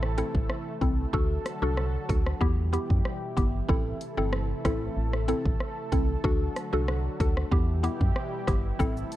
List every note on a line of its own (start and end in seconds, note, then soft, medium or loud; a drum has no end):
0.00 0.23 A1 loud
0.00 1.11 C3 medium
0.00 1.10 E3 medium
0.00 2.38 A3 medium
0.00 1.10 E4 medium
0.00 1.11 A4 medium
0.00 cross-stick medium
0.18 0.36 C4 medium
0.18 0.36 E4 medium
0.18 0.36 A4 medium
0.18 closed hi-hat medium
0.35 0.46 A1 loud
0.35 kick medium
0.50 cross-stick medium
0.81 1.06 C2 loud
0.81 1.00 C4 medium
0.81 1.00 E4 medium
0.81 1.00 A4 medium
0.81 kick medium
0.81 closed hi-hat medium
1.13 1.38 D2 loud
1.13 2.40 D3 medium
1.13 2.40 F#3 medium
1.13 1.58 D4 loud
1.13 2.40 F#4 medium
1.13 1.58 F#4 medium
1.13 2.40 A4 medium
1.13 1.59 A4 loud
1.13 kick loud
1.46 cross-stick medium
1.46 closed hi-hat medium
1.62 1.98 C2 medium
1.62 2.06 D4 medium
1.62 2.06 F#4 medium
1.62 2.06 A4 medium
1.77 cross-stick medium
2.09 2.33 D2 medium
2.09 2.39 D4 medium
2.09 2.39 F#4 medium
2.09 2.39 A4 medium
2.09 kick medium
2.09 closed hi-hat medium
2.26 cross-stick medium
2.41 2.78 E2 loud
2.41 3.68 B2 medium
2.41 6.20 E3 medium
2.41 3.68 G3 medium
2.41 2.70 B3 medium
2.41 2.71 E4 medium
2.41 6.20 E4 medium
2.41 2.71 G4 loud
2.41 3.68 G4 medium
2.41 kick medium
2.73 2.91 B3 medium
2.73 2.91 E4 medium
2.73 2.92 G4 medium
2.73 closed hi-hat medium
2.90 3.02 F#2 medium
2.90 kick medium
3.05 cross-stick medium
3.37 3.61 G1 loud
3.37 3.55 B3 medium
3.37 3.55 E4 medium
3.37 3.55 G4 medium
3.37 kick medium
3.37 closed hi-hat medium
3.68 3.93 A1 loud
3.68 6.22 C3 medium
3.68 7.48 A3 medium
3.68 4.13 C4 loud
3.68 4.14 E4 medium
3.68 7.48 A4 medium
3.68 4.14 A4 loud
3.68 kick loud
4.01 closed hi-hat medium
4.18 4.53 G1 medium
4.18 4.61 C4 medium
4.18 4.61 E4 medium
4.18 4.61 A4 medium
4.33 cross-stick loud
4.65 4.89 A1 loud
4.65 4.94 C4 medium
4.65 4.94 E4 medium
4.65 4.94 A4 medium
4.65 kick medium
4.65 cross-stick medium
4.65 closed hi-hat medium
4.97 5.33 A1 loud
5.13 cross-stick medium
5.28 5.47 C4 medium
5.28 5.47 E4 medium
5.28 5.47 A4 medium
5.28 closed hi-hat medium
5.45 5.57 A1 loud
5.45 kick medium
5.60 cross-stick medium
5.92 6.16 C2 loud
5.92 6.10 C4 medium
5.92 6.11 E4 medium
5.92 6.11 A4 medium
5.92 kick medium
5.92 closed hi-hat medium
6.24 6.48 D2 loud
6.24 7.51 D3 medium
6.24 7.51 F#3 medium
6.24 6.69 D4 medium
6.24 7.51 F#4 medium
6.24 6.69 F#4 medium
6.24 6.69 A4 loud
6.24 kick loud
6.56 cross-stick medium
6.56 closed hi-hat medium
6.73 7.09 C2 medium
6.73 7.16 D4 medium
6.73 7.16 F#4 medium
6.73 7.17 A4 medium
6.88 cross-stick loud
7.20 7.44 D2 loud
7.20 7.49 D4 medium
7.20 7.50 F#4 medium
7.20 7.50 A4 medium
7.20 kick medium
7.20 closed hi-hat medium
7.37 cross-stick medium
7.52 7.89 E2 loud
7.52 8.78 B2 medium
7.52 8.78 E3 medium
7.52 8.78 G3 medium
7.52 7.81 B3 medium
7.52 7.81 E4 medium
7.52 9.16 E4 medium
7.52 8.78 G4 medium
7.52 7.82 G4 loud
7.52 kick medium
7.83 8.02 B3 medium
7.83 8.02 E4 medium
7.83 8.02 G4 medium
7.83 closed hi-hat medium
8.01 8.12 F#2 medium
8.01 kick medium
8.16 cross-stick medium
8.47 8.72 G1 loud
8.47 8.66 B3 medium
8.47 8.66 E4 medium
8.47 8.66 G4 medium
8.47 kick medium
8.47 cross-stick medium
8.47 closed hi-hat medium
8.79 9.04 A1 loud
8.79 9.16 C3 medium
8.79 9.16 E3 medium
8.79 9.16 A3 medium
8.79 9.16 C4 medium
8.79 9.16 E4 medium
8.79 9.16 A4 loud
8.79 9.16 A4 medium
8.79 kick loud
8.79 shaker medium
8.97 shaker soft
9.12 closed hi-hat medium
9.12 shaker soft